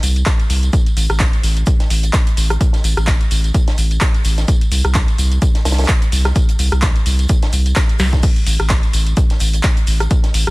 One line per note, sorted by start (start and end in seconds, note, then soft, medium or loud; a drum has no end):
0.03 0.23 C2 medium
0.03 open hi-hat loud
0.03 tambourine medium
0.03 shaker medium
0.16 closed hi-hat soft
0.16 tambourine soft
0.26 kick loud
0.26 cross-stick medium
0.26 snare loud
0.26 clap loud
0.26 closed hi-hat medium
0.26 tambourine soft
0.26 shaker medium
0.40 closed hi-hat soft
0.40 tambourine soft
0.50 0.70 C2 loud
0.50 open hi-hat loud
0.50 tambourine medium
0.63 closed hi-hat soft
0.63 tambourine soft
0.73 kick loud
0.73 closed hi-hat medium
0.73 tambourine soft
0.73 shaker medium
0.86 closed hi-hat soft
0.86 tambourine soft
0.96 1.08 A1 loud
0.96 open hi-hat loud
0.96 tambourine medium
0.96 shaker medium
1.10 1.29 A1 loud
1.10 cross-stick medium
1.10 closed hi-hat soft
1.10 tambourine soft
1.19 kick loud
1.19 snare loud
1.19 clap loud
1.19 closed hi-hat medium
1.19 tambourine soft
1.19 shaker medium
1.33 closed hi-hat soft
1.33 tambourine soft
1.43 1.64 A1 loud
1.43 open hi-hat loud
1.43 tambourine medium
1.43 shaker medium
1.57 closed hi-hat soft
1.57 tambourine soft
1.66 kick loud
1.66 closed hi-hat medium
1.66 tambourine soft
1.66 shaker medium
1.80 snare soft
1.80 closed hi-hat soft
1.80 tambourine soft
1.90 2.10 A1 medium
1.90 open hi-hat loud
1.90 tambourine medium
1.90 shaker medium
2.03 closed hi-hat soft
2.03 tambourine soft
2.13 kick loud
2.13 snare loud
2.13 clap loud
2.13 closed hi-hat medium
2.13 tambourine soft
2.13 shaker medium
2.27 closed hi-hat soft
2.27 tambourine soft
2.37 2.57 A1 medium
2.37 open hi-hat loud
2.37 tambourine medium
2.37 shaker medium
2.50 cross-stick medium
2.50 closed hi-hat soft
2.50 tambourine soft
2.61 kick loud
2.61 closed hi-hat medium
2.61 tambourine soft
2.61 shaker medium
2.73 snare soft
2.73 closed hi-hat soft
2.73 tambourine soft
2.84 2.95 A1 medium
2.84 open hi-hat loud
2.84 tambourine medium
2.84 shaker medium
2.97 3.17 A1 loud
2.97 cross-stick medium
2.97 closed hi-hat soft
2.97 tambourine soft
3.07 kick loud
3.07 snare loud
3.07 clap loud
3.07 closed hi-hat medium
3.07 tambourine soft
3.07 shaker medium
3.21 closed hi-hat soft
3.21 tambourine soft
3.31 3.51 A1 loud
3.31 open hi-hat loud
3.31 tambourine medium
3.31 shaker medium
3.44 closed hi-hat soft
3.44 tambourine soft
3.54 kick loud
3.54 closed hi-hat medium
3.54 tambourine soft
3.54 shaker medium
3.68 snare medium
3.68 closed hi-hat soft
3.68 tambourine soft
3.78 3.98 A1 medium
3.78 open hi-hat loud
3.78 tambourine medium
3.78 shaker medium
3.91 closed hi-hat soft
3.91 tambourine soft
4.01 kick loud
4.01 cross-stick medium
4.01 snare loud
4.01 clap loud
4.01 closed hi-hat medium
4.01 tambourine soft
4.01 shaker medium
4.14 closed hi-hat soft
4.14 tambourine soft
4.24 4.45 A1 medium
4.24 open hi-hat loud
4.24 tambourine medium
4.24 shaker medium
4.38 snare soft
4.38 closed hi-hat soft
4.38 tambourine soft
4.48 kick loud
4.48 closed hi-hat loud
4.48 tambourine soft
4.48 shaker medium
4.61 closed hi-hat soft
4.61 tambourine soft
4.71 4.83 C2 loud
4.71 open hi-hat loud
4.71 tambourine medium
4.71 shaker medium
4.85 5.04 C2 loud
4.85 cross-stick medium
4.85 closed hi-hat soft
4.85 tambourine soft
4.94 kick loud
4.94 snare loud
4.94 clap loud
4.94 closed hi-hat loud
4.94 tambourine soft
4.94 shaker medium
5.08 closed hi-hat soft
5.08 tambourine soft
5.18 5.39 C2 loud
5.18 open hi-hat loud
5.18 tambourine medium
5.18 shaker medium
5.32 closed hi-hat soft
5.32 tambourine soft
5.42 kick loud
5.42 closed hi-hat medium
5.42 tambourine soft
5.42 shaker medium
5.55 snare soft
5.55 closed hi-hat soft
5.55 tambourine soft
5.65 5.86 C2 medium
5.65 snare medium
5.65 open hi-hat loud
5.65 tambourine medium
5.65 shaker medium
5.72 snare medium
5.72 shaker medium
5.78 snare medium
5.78 closed hi-hat soft
5.78 tambourine soft
5.78 shaker medium
5.84 snare medium
5.84 shaker medium
5.88 kick loud
5.88 snare loud
5.88 clap loud
5.88 closed hi-hat loud
5.88 tambourine soft
6.02 closed hi-hat soft
6.02 tambourine soft
6.12 6.32 C2 medium
6.12 open hi-hat loud
6.12 tambourine medium
6.12 shaker medium
6.25 cross-stick medium
6.25 snare soft
6.25 closed hi-hat soft
6.25 tambourine soft
6.35 kick loud
6.35 closed hi-hat medium
6.35 tambourine soft
6.35 shaker medium
6.49 closed hi-hat soft
6.49 tambourine soft
6.59 6.70 C2 loud
6.59 open hi-hat loud
6.59 tambourine medium
6.59 shaker medium
6.72 6.92 C2 medium
6.72 cross-stick medium
6.72 closed hi-hat soft
6.72 tambourine soft
6.82 kick loud
6.82 snare loud
6.82 clap loud
6.82 closed hi-hat loud
6.82 tambourine soft
6.82 shaker medium
6.96 closed hi-hat soft
6.96 tambourine soft
7.06 7.26 C2 loud
7.06 open hi-hat loud
7.06 tambourine medium
7.06 shaker medium
7.19 closed hi-hat soft
7.19 tambourine soft
7.29 kick loud
7.29 closed hi-hat medium
7.29 tambourine soft
7.29 shaker medium
7.42 snare medium
7.42 closed hi-hat soft
7.42 tambourine soft
7.52 7.73 C2 medium
7.52 open hi-hat loud
7.52 tambourine medium
7.52 shaker medium
7.66 closed hi-hat soft
7.66 tambourine soft
7.76 kick loud
7.76 cross-stick medium
7.76 snare loud
7.76 clap loud
7.76 closed hi-hat loud
7.76 tambourine soft
7.76 shaker medium
7.89 closed hi-hat soft
7.89 tambourine soft
7.99 8.20 C2 loud
7.99 snare medium
7.99 open hi-hat medium
7.99 tambourine medium
7.99 shaker medium
8.13 kick medium
8.13 snare medium
8.13 closed hi-hat soft
8.13 tambourine soft
8.23 kick loud
8.23 closed hi-hat loud
8.23 crash medium
8.23 tambourine soft
8.23 shaker medium
8.36 closed hi-hat soft
8.36 tambourine soft
8.46 8.58 A1 loud
8.46 open hi-hat loud
8.46 tambourine medium
8.46 shaker medium
8.60 8.79 A1 loud
8.60 cross-stick medium
8.60 closed hi-hat soft
8.60 tambourine soft
8.69 kick loud
8.69 snare loud
8.69 clap loud
8.69 closed hi-hat loud
8.69 tambourine soft
8.69 shaker medium
8.83 closed hi-hat soft
8.83 tambourine soft
8.93 9.14 A1 loud
8.93 open hi-hat loud
8.93 tambourine medium
8.93 shaker medium
9.07 closed hi-hat soft
9.07 tambourine soft
9.17 kick loud
9.17 closed hi-hat loud
9.17 tambourine soft
9.17 shaker medium
9.30 snare soft
9.30 closed hi-hat soft
9.30 tambourine soft
9.40 9.61 A1 medium
9.40 open hi-hat loud
9.40 tambourine medium
9.40 shaker medium
9.53 closed hi-hat soft
9.53 tambourine soft
9.63 kick loud
9.63 snare loud
9.63 clap loud
9.63 closed hi-hat loud
9.63 tambourine soft
9.63 shaker medium
9.77 closed hi-hat soft
9.77 tambourine soft
9.87 10.07 A1 loud
9.87 open hi-hat loud
9.87 tambourine medium
9.87 shaker medium
10.00 cross-stick medium
10.00 closed hi-hat soft
10.00 tambourine soft
10.11 kick loud
10.11 closed hi-hat loud
10.11 tambourine soft
10.11 shaker medium
10.24 snare soft
10.24 closed hi-hat soft
10.24 tambourine soft
10.34 10.45 A1 loud
10.34 open hi-hat loud
10.34 tambourine medium
10.34 shaker medium
10.47 10.51 A1 loud
10.47 cross-stick medium
10.47 closed hi-hat soft